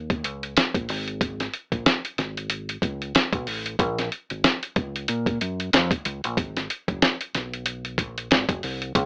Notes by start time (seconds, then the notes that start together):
Already playing: D#2
0.10 kick, closed hi-hat
0.24 C#2, closed hi-hat
0.43 closed hi-hat
0.57 snare, closed hi-hat
0.75 A#1, kick, closed hi-hat
0.89 G#1, open hi-hat
1.08 closed hi-hat
1.21 kick, closed hi-hat
1.40 snare, closed hi-hat
1.54 closed hi-hat
1.72 A#1, kick, closed hi-hat
1.86 snare, closed hi-hat
2.05 closed hi-hat
2.18 G#1, snare, closed hi-hat
2.37 closed hi-hat
2.50 closed hi-hat
2.69 closed hi-hat
2.82 C#2, kick, closed hi-hat
3.02 closed hi-hat
3.15 snare, closed hi-hat
3.33 B1, kick, closed hi-hat
3.47 A1, open hi-hat
3.66 closed hi-hat
3.79 A#1, kick, closed hi-hat
3.98 snare, closed hi-hat
4.12 closed hi-hat
4.30 G#1, closed hi-hat
4.44 snare, closed hi-hat
4.63 closed hi-hat
4.76 C#2, kick, closed hi-hat
4.96 closed hi-hat
5.08 A#2, closed hi-hat
5.26 kick, closed hi-hat
5.41 F#2, closed hi-hat
5.60 closed hi-hat
5.73 F2, snare, closed hi-hat
5.91 kick, closed hi-hat
6.05 C#2, closed hi-hat
6.24 A#1, closed hi-hat
6.37 G#1, kick, closed hi-hat
6.57 snare, closed hi-hat
6.70 closed hi-hat
6.88 F#1, kick, closed hi-hat
7.02 snare, closed hi-hat
7.21 closed hi-hat
7.35 B1, snare, closed hi-hat
7.54 closed hi-hat
7.66 closed hi-hat
7.85 closed hi-hat
7.98 A#1, kick, closed hi-hat
8.18 closed hi-hat
8.31 G#1, snare, closed hi-hat
8.49 F#1, kick, closed hi-hat
8.63 C2, open hi-hat
8.82 closed hi-hat
8.95 C#2, kick, closed hi-hat